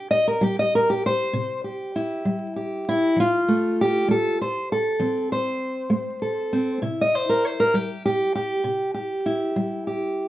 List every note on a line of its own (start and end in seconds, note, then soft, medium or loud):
0.00 0.10 G4 soft
0.11 0.26 D#5 loud
0.28 0.42 A#4 medium
0.41 0.96 G3 medium
0.41 0.57 G4 medium
0.59 0.73 D#5 medium
0.75 0.89 A#4 medium
0.90 1.04 G4 medium
1.06 1.64 C5 medium
1.33 1.88 C3 medium
1.64 2.55 G4 soft
1.96 2.87 E4 soft
2.25 2.80 G3 medium
2.56 3.16 G4 soft
2.89 3.17 E4 loud
3.16 3.71 F3 medium
3.16 4.40 F4 medium
3.48 4.07 A3 soft
3.81 4.09 G4 medium
4.08 4.63 A3 medium
4.08 4.40 A4 medium
4.41 4.70 C5 medium
4.72 5.31 A4 medium
4.99 5.54 F3 medium
4.99 6.52 C4 soft
5.32 6.83 C5 medium
5.90 6.45 A3 medium
6.22 6.79 A4 soft
6.53 6.82 C4 soft
6.82 7.37 C3 medium
6.82 9.25 E4 soft
7.01 7.15 D#5 medium
7.15 7.43 C5 medium
7.29 7.44 A#4 medium
7.45 7.75 C5 medium
7.60 7.74 A#4 medium
7.74 8.28 G3 medium
7.74 8.04 G4 medium
8.05 8.34 G4 medium
8.35 8.93 G4 medium
8.64 9.19 C3 medium
8.94 9.86 G4 soft
9.26 10.28 E4 medium
9.56 10.11 G3 medium
9.87 10.28 G4 soft